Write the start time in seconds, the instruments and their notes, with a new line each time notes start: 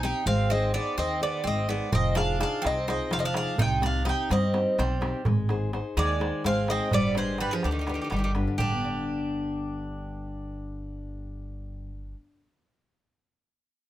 Already playing: upright bass B1
0.03 nylon-string guitar C4 D#4 G4, bouzouki D#4 G5
0.26 upright bass G#1, nylon-string guitar G#3, bouzouki C4 F5
0.50 bouzouki C4 D#5, nylon-string guitar D#4 G#4 C5
0.74 bouzouki B3 D5, nylon-string guitar D#4 G#4 C5
0.98 upright bass D#2, nylon-string guitar D#3, bouzouki C4 D#5
1.21 bouzouki B3 D5, nylon-string guitar D#4 G#4 C5
1.44 upright bass G#1, nylon-string guitar G#3, bouzouki C4 D#5
1.68 bouzouki B3 D5, nylon-string guitar D#4 G#4 C5
1.92 upright bass F1, nylon-string guitar F3, bouzouki C4 D#5, darbuka dum
2.15 bouzouki D4 F5, nylon-string guitar D#4 F4 G#4, darbuka tek
2.39 bouzouki D4 F5, nylon-string guitar D#4 F4 G#4, darbuka tek
2.62 upright bass C2, nylon-string guitar C3, bouzouki C4, darbuka tek
2.67 bouzouki D#5
2.87 bouzouki C4 D#5, nylon-string guitar D#4 F4 G#4, darbuka tek
3.11 upright bass F1, nylon-string guitar F3, bouzouki C4 F5, darbuka tek
3.19 bouzouki C4 D#5
3.25 bouzouki D4 F5
3.34 bouzouki D4 F5, nylon-string guitar D#4 F4 G#4, darbuka tek
3.47 darbuka tek
3.58 upright bass C2, nylon-string guitar C3, bouzouki D#4 G5, darbuka dum
3.81 nylon-string guitar C4 D#4 G4, bouzouki D4, darbuka tek
3.86 bouzouki F5
4.05 nylon-string guitar C4 D#4 G4, bouzouki D#4, darbuka tek
4.09 bouzouki G5
4.29 upright bass G2, nylon-string guitar G3, bouzouki C4 D#5, darbuka tek
4.54 nylon-string guitar C4 D#4 G4, darbuka tek
4.78 upright bass B1, bouzouki G3 C5, nylon-string guitar C4, darbuka tek
5.01 nylon-string guitar C4 D#4 G4, darbuka tek
5.14 darbuka tek
5.25 upright bass G#1, nylon-string guitar G#3, darbuka dum
5.49 nylon-string guitar D#4 G#4 C5, darbuka tek
5.73 nylon-string guitar D#4 G#4 C5, darbuka tek
5.97 upright bass D#2, nylon-string guitar D#3, bouzouki G#3 D5, darbuka tek
6.20 nylon-string guitar D#4 G#4 C5, darbuka tek
6.44 upright bass G#1, nylon-string guitar G#3, bouzouki C4 F5, darbuka tek
6.68 bouzouki C4 D#5, nylon-string guitar D#4 G#4 C5, darbuka tek
6.91 upright bass G1, nylon-string guitar G3, bouzouki B3 D5, darbuka dum
7.15 bouzouki G#3 C5, nylon-string guitar D4 G4 B4, darbuka tek
7.38 bouzouki G3 B4, nylon-string guitar D4 G4 B4, darbuka tek
7.51 bouzouki F3 G#4
7.63 upright bass D2, nylon-string guitar D3, bouzouki D3 G4, darbuka tek
7.71 bouzouki D#3 G4
7.79 bouzouki D#3 G4
7.87 bouzouki D#3 G4, nylon-string guitar D4 G4 B4, darbuka tek
7.94 bouzouki D#3 G4
7.99 bouzouki G4, darbuka tek
8.04 bouzouki D#3
8.10 upright bass G1, bouzouki D#3 G4, nylon-string guitar G3, darbuka tek
8.16 bouzouki D#3 G4
8.23 bouzouki D#3 G4, darbuka tek
8.35 nylon-string guitar G2 D4 G4 B4, darbuka tek
8.47 nylon-string guitar D3, darbuka tek
8.58 upright bass G1, nylon-string guitar G3, bouzouki D4 G4, darbuka dum
8.72 nylon-string guitar B3
8.84 nylon-string guitar D4